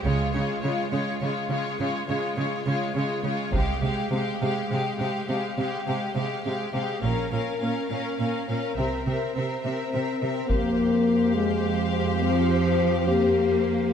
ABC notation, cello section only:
X:1
M:12/8
L:1/8
Q:3/8=69
K:Fm
V:1 name="Cello section" clef=bass
D, D, D, D, D, D, D, D, D, D, D, D, | C, C, C, C, C, C, C, C, C, C, C, C, | B,, B,, B,, B,, B,, B,, C, C, C, C, C, C, | z6 F,3 B,3 |]